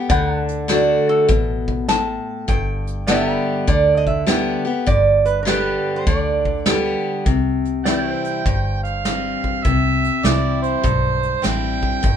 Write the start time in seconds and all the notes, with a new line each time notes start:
0.10 D2 D3 D5 F#5 G5 B5, kick, closed hi-hat
0.31 F#5
0.37 A5
0.48 closed hi-hat
0.68 D3 A3 D4 F#4 D5, snare, closed hi-hat
1.09 A4
1.29 A1 B2, kick, closed hi-hat
1.68 kick
1.88 A2 A5, snare, closed hi-hat
2.48 G1 G2 G5, kick, closed hi-hat
2.87 closed hi-hat
3.07 D3 G3 B3 G4 D5 E5 F#5 A5, snare, closed hi-hat
3.28 G5
3.35 B5
3.67 D2 D3 D5, kick, closed hi-hat
3.97 D#5
4.07 E5, kick
4.27 D3 G3 B3 G4, snare, closed hi-hat
4.65 B3 G4
4.87 G1 G2 D5, kick, closed hi-hat
5.26 B4, closed hi-hat
5.43 D3 G3 A#4
5.47 B3 G4 B4 D5 G5 B5, snare, closed hi-hat
5.96 C5
6.07 D2 D3 D5, kick, closed hi-hat
6.45 kick
6.66 D3 G3 B3 G4, snare, closed hi-hat
7.26 C2 C3, kick, closed hi-hat
7.65 closed hi-hat
7.85 E3 G3 C4 E4 D5 G5, snare, closed hi-hat
8.10 C5
8.24 closed hi-hat
8.45 G1 G2, kick, closed hi-hat
8.83 F5, closed hi-hat
9.05 E3 G3 C4, snare, closed hi-hat
9.44 kick
9.64 C2 C3 E5, kick, closed hi-hat
10.04 closed hi-hat
10.23 C2 E3 G3 C4 E4 D5, snare, closed hi-hat
10.62 C5, closed hi-hat
10.84 B1 G2, kick, closed hi-hat
11.23 closed hi-hat
11.42 A1 E3 G3 C4 E4 G5, snare, closed hi-hat
11.83 kick
12.03 G1 G2, kick, closed hi-hat